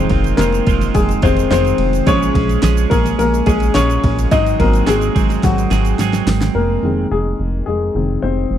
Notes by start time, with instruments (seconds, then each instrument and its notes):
Already playing: clean electric guitar F2 C3 D#3 G#3, upright piano D#3 G#3 A#3 C4 A#4 C5
0.09 analog synth bass F1, clean electric guitar D#3 G#3 C4 F4, kick, ride
0.24 ride, shaker
0.37 analog synth bass F1, clean electric guitar D#3 G#3 C4 F4, upright piano A#3 A#4, snare, ride
0.41 shaker
0.52 ride, shaker
0.67 analog synth bass F1, clean electric guitar D#3 G#3 C4 F4, kick, ride, shaker
0.81 snare, ride, shaker
0.95 analog synth bass F1, upright piano G#3 G#4, kick, ride, shaker
1.09 ride, shaker
1.22 analog synth bass F1, upright piano D#3 G#3 C4 C5, clean electric guitar D#3 G#3 C4 F4, kick, ride, shaker
1.37 ride, shaker
1.50 analog synth bass F1, clean electric guitar D#3 G#3 C4 F4, upright piano C4 C5, snare, ride, shaker
1.65 ride, shaker
1.78 analog synth bass F1, ride
1.93 ride, shaker
2.06 analog synth bass A#1, clean electric guitar A#2 F3 G#3 C#4 G#4, upright piano C#3 G#3 C#4 C5 C#5, kick, ride, shaker
2.22 shaker
2.34 analog synth bass A#1, clean electric guitar G#3 C#4 G#4, kick, ride
2.49 ride, shaker
2.62 analog synth bass A#1, clean electric guitar F3 G#3 C#4 G#4, snare, ride, shaker
2.77 ride, shaker
2.90 analog synth bass A#1, clean electric guitar G#3 C#4 G#4, upright piano A#3 A#4, kick, ride, shaker
3.05 snare, ride, shaker
3.19 analog synth bass A#1, upright piano A#3 A#4, ride, shaker
3.34 ride, shaker
3.46 analog synth bass A#1, upright piano G#3 G#4, clean electric guitar G#3 C#4 G#4, kick, ride, shaker
3.60 ride, shaker
3.74 analog synth bass A#1, clean electric guitar F3 G#3 C#4 G#4, upright piano C#4 C#5, snare, ride, shaker
3.90 ride, shaker
4.04 analog synth bass A#1, kick, ride
4.19 ride, shaker
4.31 analog synth bass G#1, clean electric guitar G#2 D#3 F#3 G#3 C4 G#4, upright piano D#4 D#5, kick, ride, shaker
4.46 ride, shaker
4.59 analog synth bass G#1, upright piano F#3 A#3 C4 A#4, clean electric guitar F#3 G#3 C4 G#4, kick, ride
4.73 ride, shaker
4.86 analog synth bass G#1, clean electric guitar F#3 G#3 C4 G#4, upright piano G#3 G#4, snare, ride, shaker
5.01 ride, shaker
5.15 analog synth bass G#1, clean electric guitar F#3 G#3 C4 G#4, kick, ride, shaker
5.29 snare, ride, shaker
5.43 analog synth bass G#1, upright piano F#3 F#4, kick, snare, ride, shaker
5.58 ride, shaker
5.71 analog synth bass G#1, clean electric guitar F#3 G#3 C4 G#4, snare, ride, shaker
5.85 ride, shaker
5.99 analog synth bass G#1, clean electric guitar F#3 G#3 C4 G#4, snare, ride, shaker
6.13 snare, ride, shaker
6.27 analog synth bass G#1, snare, open hi-hat, ride
6.41 snare, ride, shaker
6.55 analog synth bass F1, upright piano A#3 A#4
6.83 analog synth bass F1, upright piano D#3 G#3 C4
7.11 analog synth bass F1, upright piano G#3 G#4
7.39 analog synth bass F1
7.66 analog synth bass F1, upright piano G#3 G#4
7.95 analog synth bass F1, upright piano D#3 G#3 C4
8.22 analog synth bass F1, upright piano C4 C5
8.51 analog synth bass F1